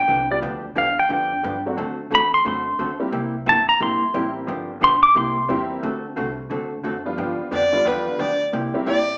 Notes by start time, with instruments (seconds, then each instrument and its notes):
Already playing: pedal steel guitar G5
0.08 upright bass C2, hollow-body jazz guitar D3 F3 B3 D4 G4
0.30 honky-tonk piano G3 B3 D4 F4 G4, pedal steel guitar D5
0.42 upright bass D2, hollow-body jazz guitar D3 F3 B3 D4 G4
0.75 upright bass E2, hollow-body jazz guitar D3 F3 B3 D4 G4, pedal steel guitar F5
0.99 pedal steel guitar G5
1.09 upright bass F2, hollow-body jazz guitar D3 F3 B3 D4 G4
1.13 pedal steel guitar G5
1.43 upright bass G2, hollow-body jazz guitar D3 F3 B3 D4 G4
1.66 honky-tonk piano F#3 A3 C4 D4 F#4
1.77 upright bass D2, hollow-body jazz guitar D3 A3 C4 F#4 A4
2.11 upright bass E2, hollow-body jazz guitar D3 A3 C4 F#4 A4
2.15 pedal steel guitar B5
2.34 pedal steel guitar C6
2.45 upright bass F#2, hollow-body jazz guitar D3 A3 C4 F#4 A4, pedal steel guitar C6
2.79 upright bass D2, hollow-body jazz guitar D3 A3 C4 F#4 A4
3.00 honky-tonk piano G3 A#3 C4 E4 G4
3.12 upright bass C2, hollow-body jazz guitar C3 G3 A#3 E4 G4
3.46 upright bass G1, hollow-body jazz guitar C3 G3 A#3 E4 G4, pedal steel guitar A5
3.68 pedal steel guitar A#5, muted upright bass stroke
3.80 upright bass A#1, hollow-body jazz guitar C3 G3 A#3 E4 G4, pedal steel guitar C6
4.02 muted upright bass stroke
4.14 upright bass A1, hollow-body jazz guitar C3 G3 A#3 E4 G4, honky-tonk piano G3 A#3 C4 E4 G4
4.47 upright bass G1, hollow-body jazz guitar D3 F3 B3 D4 G4
4.81 upright bass B1, hollow-body jazz guitar D3 F3 B3 D4 G4, pedal steel guitar C6
5.03 pedal steel guitar D6
5.15 upright bass C2, hollow-body jazz guitar C3 G3 A#3 E4 G4, pedal steel guitar C6
5.48 upright bass E2, hollow-body jazz guitar C3 G3 A#3 E4 G4, honky-tonk piano G3 A#3 C4 E4 G4
5.83 upright bass D2, hollow-body jazz guitar D3 A3 C4 F#4 A4
6.16 upright bass C2, hollow-body jazz guitar D3 A3 C4 F#4 A4
6.50 upright bass D2, hollow-body jazz guitar D3 A3 C4 F#4 A4
6.84 upright bass F#2, hollow-body jazz guitar D3 A3 C4 F#4 A4
7.05 honky-tonk piano F3 G3 B3 D4 F4
7.17 upright bass G2, hollow-body jazz guitar D3 F3 B3 D4 G4
7.40 muted upright bass stroke
7.51 upright bass F2, hollow-body jazz guitar D3 F3 B3 D4 G4, fiddle D5
7.72 honky-tonk piano D3 G3 B3 D4 F4
7.85 upright bass E2, hollow-body jazz guitar D3 F3 B3 D4 G4, fiddle B4
8.19 upright bass D2, hollow-body jazz guitar D3 F3 B3 D4 G4, fiddle D5
8.53 upright bass C2, hollow-body jazz guitar C3 G3 A#3 E4 G4
8.74 honky-tonk piano G3 A#3 C4 E4 G4, muted upright bass stroke
8.86 upright bass A1, hollow-body jazz guitar C3 G3 A#3 E4 G4, fiddle D5